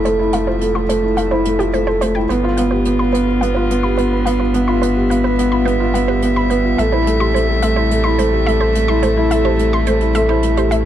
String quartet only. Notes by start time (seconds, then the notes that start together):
Already playing: C3 F3 A3 E5
2.29 D3 G3 B3 F4
4.54 E5
6.78 C3 A3